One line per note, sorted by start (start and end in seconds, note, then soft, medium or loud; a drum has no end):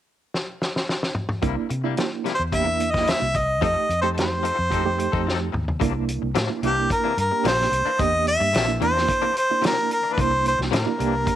0.34 snare medium
0.62 snare medium
0.76 snare medium
0.89 snare medium
1.03 snare medium
1.15 mid tom medium
1.29 mid tom medium
1.42 1.55 C2 medium
1.42 1.57 C3 medium
1.42 1.56 G3 medium
1.42 1.72 A#3 medium
1.42 1.56 A#3 medium
1.42 1.72 D4 medium
1.42 1.72 E4 medium
1.42 1.55 E4 medium
1.42 kick medium
1.42 closed hi-hat medium
1.57 muted clean electric guitar stroke soft
1.70 1.94 C3 medium
1.70 muted clean electric guitar stroke soft
1.70 closed hi-hat medium
1.84 1.97 G3 soft
1.84 2.33 A#3 medium
1.84 1.97 A#3 soft
1.84 2.33 D4 medium
1.84 1.97 E4 medium
1.84 2.33 E4 medium
1.97 snare medium
1.97 closed hi-hat medium
2.24 2.39 C3 soft
2.24 2.39 G3 soft
2.24 2.39 A#3 medium
2.24 2.38 E4 medium
2.24 snare soft
2.24 closed hi-hat soft
2.35 2.43 C5 medium
2.39 3.12 E2 medium
2.39 muted clean electric guitar stroke soft
2.52 2.67 C3 medium
2.52 2.67 G3 medium
2.52 2.62 A#3 medium
2.52 2.67 A#3 medium
2.52 2.62 D4 medium
2.52 2.66 E4 medium
2.52 2.63 G4 medium
2.52 2.92 E5 medium
2.52 kick medium
2.52 closed hi-hat medium
2.66 3.35 A#3 medium
2.66 3.34 D4 medium
2.66 3.35 E4 medium
2.66 muted clean electric guitar stroke soft
2.80 muted clean electric guitar stroke soft
2.80 closed hi-hat medium
2.91 3.07 E4 medium
2.91 3.11 D#5 medium
2.91 kick medium
2.95 3.06 G3 soft
2.95 3.07 A#3 soft
2.95 snare soft
3.07 3.21 C3 soft
3.07 3.21 G3 medium
3.07 3.21 A#3 medium
3.07 3.20 E4 medium
3.07 3.38 E5 medium
3.07 snare medium
3.07 closed hi-hat medium
3.21 3.62 C2 medium
3.21 muted clean electric guitar stroke soft
3.34 3.63 D#5 medium
3.34 muted clean electric guitar stroke soft
3.34 kick medium
3.34 closed hi-hat medium
3.61 3.75 F2 medium
3.61 3.76 F3 medium
3.61 3.91 A3 medium
3.61 3.76 C4 medium
3.61 3.91 D#4 medium
3.61 3.75 D#4 medium
3.61 3.91 G4 medium
3.61 3.75 A4 medium
3.61 3.97 D#5 medium
3.61 kick medium
3.61 closed hi-hat medium
3.76 muted clean electric guitar stroke soft
3.76 muted fingered electric bass stroke soft
3.89 4.50 F2 medium
3.89 muted clean electric guitar stroke soft
3.89 closed hi-hat medium
4.01 4.52 A3 medium
4.01 4.16 C4 soft
4.01 4.52 D#4 medium
4.01 4.16 D#4 soft
4.01 4.52 G4 medium
4.01 4.16 A4 medium
4.01 4.09 C5 medium
4.16 5.51 C5 medium
4.16 muted clean electric guitar stroke soft
4.16 snare medium
4.16 closed hi-hat medium
4.43 4.58 F3 soft
4.43 4.57 C4 soft
4.43 4.57 D#4 medium
4.43 4.57 A4 medium
4.43 closed hi-hat medium
4.58 5.07 F2 medium
4.58 muted clean electric guitar stroke soft
4.70 4.85 F3 medium
4.70 4.81 A3 medium
4.70 4.85 C4 medium
4.70 4.81 D#4 medium
4.70 4.85 D#4 medium
4.70 4.81 G4 medium
4.70 4.84 A4 medium
4.70 kick medium
4.70 closed hi-hat medium
4.85 5.53 A3 medium
4.85 5.53 D#4 medium
4.85 5.53 G4 loud
4.98 muted clean electric guitar stroke soft
4.98 closed hi-hat medium
5.12 5.49 F2 medium
5.12 5.25 C4 soft
5.12 5.25 D#4 soft
5.12 5.25 A4 medium
5.12 kick medium
5.25 5.40 F3 medium
5.25 5.39 C4 medium
5.25 5.39 D#4 medium
5.25 5.38 A4 medium
5.25 snare medium
5.39 muted clean electric guitar stroke soft
5.52 5.78 D#2 medium
5.52 muted clean electric guitar stroke soft
5.52 mid tom medium
5.68 floor tom medium
5.80 6.18 C2 medium
5.80 5.94 C3 medium
5.80 5.94 E3 medium
5.80 5.93 A#3 medium
5.80 6.30 A#3 medium
5.80 5.93 D4 medium
5.80 6.30 D4 medium
5.80 6.30 E4 medium
5.80 kick loud
5.80 closed hi-hat medium
5.94 muted clean electric guitar stroke soft
6.08 closed hi-hat medium
6.22 6.34 C2 medium
6.22 muted clean electric guitar stroke soft
6.35 6.48 A2 medium
6.35 6.49 C3 medium
6.35 6.49 E3 medium
6.35 6.49 A#3 medium
6.35 6.48 D4 medium
6.35 snare loud
6.35 closed hi-hat medium
6.50 6.59 A#3 medium
6.50 6.59 D4 medium
6.50 6.59 E4 medium
6.50 muted clean electric guitar stroke soft
6.62 6.87 C2 medium
6.62 6.79 C3 medium
6.62 6.80 E3 medium
6.62 7.12 A#3 medium
6.62 6.80 A#3 medium
6.62 7.12 D4 medium
6.62 6.80 D4 medium
6.62 7.12 E4 medium
6.62 6.89 G4 medium
6.62 closed hi-hat medium
6.89 7.16 A#4 medium
6.89 muted clean electric guitar stroke soft
6.89 kick medium
6.89 closed hi-hat medium
7.04 7.16 C3 medium
7.04 7.16 E3 medium
7.04 7.16 A#3 medium
7.04 7.17 D4 medium
7.17 7.30 G2 medium
7.17 7.44 A#4 medium
7.17 muted clean electric guitar stroke soft
7.17 closed hi-hat medium
7.31 7.80 A#3 medium
7.31 7.80 D4 medium
7.31 7.80 G4 medium
7.31 muted clean electric guitar stroke soft
7.44 7.69 A#1 medium
7.44 7.58 C3 medium
7.44 7.58 E3 medium
7.44 7.58 A#3 medium
7.44 7.57 D4 medium
7.44 8.03 C5 loud
7.44 snare loud
7.44 closed hi-hat medium
7.58 muted clean electric guitar stroke soft
7.58 snare soft
7.71 7.84 C2 medium
7.71 muted clean electric guitar stroke soft
7.71 closed hi-hat medium
7.85 8.03 E3 soft
7.85 8.02 A#3 soft
7.85 8.02 D4 medium
7.99 8.36 E2 medium
7.99 8.48 A#3 medium
7.99 8.48 D4 medium
7.99 8.48 G4 medium
7.99 8.27 D#5 loud
7.99 kick loud
7.99 closed hi-hat medium
8.13 muted clean electric guitar stroke soft
8.27 8.78 E5 loud
8.27 closed hi-hat medium
8.40 8.52 G2 medium
8.40 muted clean electric guitar stroke soft
8.53 8.78 A#1 medium
8.53 8.68 C3 medium
8.53 8.67 E3 medium
8.53 8.67 A#3 medium
8.53 8.66 D4 medium
8.53 snare loud
8.53 closed hi-hat medium
8.68 8.78 A#3 medium
8.68 8.77 D4 medium
8.68 8.77 E4 medium
8.80 9.05 E2 medium
8.80 8.97 C3 medium
8.80 8.98 E3 medium
8.80 8.98 A#3 medium
8.80 9.30 A#3 medium
8.80 9.30 D4 medium
8.80 8.98 D4 medium
8.80 9.30 E4 medium
8.80 9.33 C5 medium
8.80 closed hi-hat medium
8.97 snare soft
9.08 muted clean electric guitar stroke soft
9.08 kick medium
9.08 closed hi-hat medium
9.22 9.34 C3 medium
9.22 9.34 E3 medium
9.22 9.34 A#3 medium
9.22 9.35 D4 medium
9.35 9.62 C5 medium
9.35 muted clean electric guitar stroke soft
9.35 closed hi-hat medium
9.50 9.99 A#3 medium
9.50 9.99 D4 medium
9.50 9.99 E4 medium
9.50 muted clean electric guitar stroke soft
9.62 9.76 C3 medium
9.62 9.77 E3 medium
9.62 9.76 A#3 medium
9.62 9.76 D4 medium
9.62 snare loud
9.62 closed hi-hat medium
9.66 9.90 A#4 medium
9.77 muted clean electric guitar stroke soft
9.89 10.15 A#4 medium
9.89 muted clean electric guitar stroke soft
9.89 closed hi-hat medium
10.03 10.20 E3 soft
10.03 10.20 A#3 soft
10.03 10.20 D4 medium
10.13 10.22 B4 medium
10.17 10.54 C2 medium
10.17 10.67 A#3 medium
10.17 10.66 D4 medium
10.17 10.67 E4 medium
10.17 10.46 C5 medium
10.17 kick loud
10.17 closed hi-hat medium
10.31 muted clean electric guitar stroke soft
10.46 10.59 C5 medium
10.46 closed hi-hat medium
10.59 10.71 C2 medium
10.59 muted clean electric guitar stroke soft
10.59 snare soft
10.71 10.85 A2 medium
10.71 10.86 C3 medium
10.71 10.85 E3 medium
10.71 10.85 A#3 medium
10.71 10.84 D4 medium
10.71 snare loud
10.71 closed hi-hat medium
10.75 11.36 A#4 medium
10.85 10.96 A#3 medium
10.85 10.96 D4 medium
10.85 10.96 E4 medium
10.85 muted clean electric guitar stroke soft
10.98 11.24 C2 medium
10.98 11.16 C3 medium
10.98 11.16 E3 medium
10.98 11.36 A#3 medium
10.98 11.16 A#3 medium
10.98 11.36 D4 medium
10.98 11.17 D4 medium
10.98 11.36 G4 medium
10.98 closed hi-hat medium
11.26 muted clean electric guitar stroke soft
11.26 kick medium
11.26 closed hi-hat medium